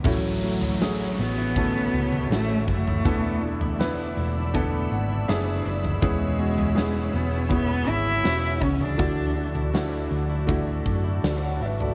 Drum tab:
CC |x---------------|----------------|----------------|----------------|
SD |----o-------o---|----o-------o---|----o-------o---|----o-------o---|
FT |o--o----o--o---o|o--o----o------o|o--o----o------o|o--o----o------o|
BD |o-------o-----o-|o-------o-------|o-------o-----o-|o-------o-o-----|